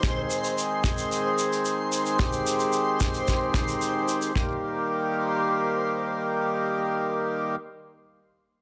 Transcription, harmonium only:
X:1
M:4/4
L:1/8
Q:1/4=111
K:Eb
V:1 name="Harmonium"
A8 | G8 | [E,G,B,G]8- | [E,G,B,G]8 |]
V:2 name="Harmonium" clef=bass
[E,A,C]8- | [E,A,C]8 | z8 | z8 |]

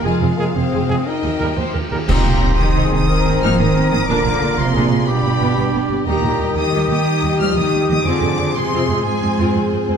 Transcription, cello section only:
X:1
M:12/8
L:1/8
Q:3/8=120
K:Eb
V:1 name="Cello section" clef=bass
F,, F,, F,, F,, F,, F,, z E,, E,, E,, E,, E,, | B,,3 E,2 E,3 F, E,2 E, | D,3 C,3 =B,,4- B,, z | B,,3 E,2 E,3 F, E,2 E, |
D,3 C,3 A,,4- A,, z |]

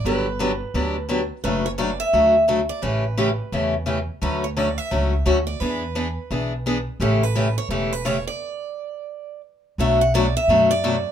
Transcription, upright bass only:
X:1
M:4/4
L:1/8
Q:"Swing" 1/4=172
K:D
V:1 name="Upright bass" clef=bass
G,,,4 D,,4 | F,,,4 D,,4 | A,,,4 E,,4 | D,,4 C,,2 D,,2 |
E,,4 B,,,4 | A,,,4 E,,,4 | z8 | [K:Bm] B,,,4 F,,4 |]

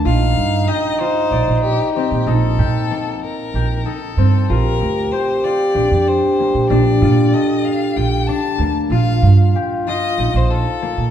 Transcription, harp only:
X:1
M:7/8
L:1/8
Q:1/4=95
K:Eblyd
V:1 name="Harp"
F2 G F d2 C | E G B,2 G E C | F2 G F D2 B, | D F A2 F D B, |
F2 G F E2 B, |]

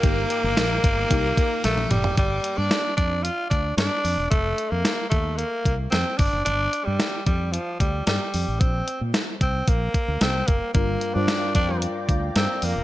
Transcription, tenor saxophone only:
X:1
M:4/4
L:1/16
Q:1/4=112
K:Gm
V:1 name="Tenor saxophone"
B,12 A,2 G,2 | G,3 D3 D2 F2 D2 D4 | A,3 B,3 A,2 B,4 C2 D2 | D3 G,3 G,2 F,2 G,2 G,4 |
C3 z3 C2 B,4 C2 B,2 | B,3 D3 D2 z4 C2 B,2 |]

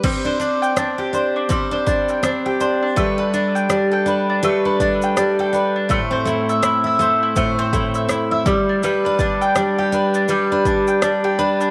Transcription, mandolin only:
X:1
M:4/4
L:1/16
Q:"Swing 16ths" 1/4=82
K:C
V:1 name="Mandolin"
G, c D g D g c D G, c D g D g c D | A, B D g D g B D A, B D g D g B D | A, c E e E e c E A, c E e E e G, D | G, B D g D g B D G, B D g D g B D |]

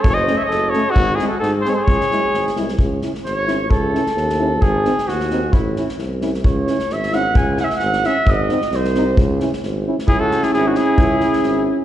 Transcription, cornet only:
X:1
M:2/4
L:1/16
Q:"Swing 16ths" 1/4=132
K:C#m
V:1 name="Cornet"
c/2 c/2 d2 e d2 c2 | F2 G A A z ^B/2 c/2 B | c6 z2 | z8 |
z8 | z8 | z8 | z8 |
z8 | z8 | z8 | G A2 G G F G2- |
G6 z2 |]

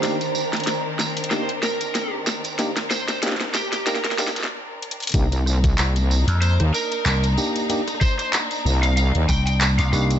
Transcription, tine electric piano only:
X:1
M:4/4
L:1/8
Q:"Swing 16ths" 1/4=94
K:Cm
V:1 name="Tine electric piano"
[B,DEG] z3 [B,DEG] z3 | [B,DEG] z [B,DEG] z [B,DEG] [B,DEG] z2 | [B,DEG] z6 [B,DEG] | [B,DEG] z6 [B,DEG] |]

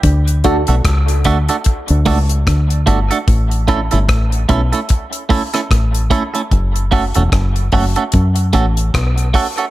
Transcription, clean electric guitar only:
X:1
M:4/4
L:1/16
Q:"Swing 16ths" 1/4=74
K:D
V:1 name="Clean electric guitar"
z2 [A,DFA] [A,DFA] z2 [A,DFA] [A,DFA] z2 [A,DFA] z3 [A,DFA] [A,DFA] | z2 [A,CEA] [A,CEA] z2 [A,CEA] [A,CEA] z2 [A,CEA] [A,CEA] z2 [A,CEA] [A,CEA] | z2 [A,CFA] [A,CFA] z2 [A,CFA] [A,CFA] z2 [A,CFA] z3 [A,CFA] [A,CFA] |]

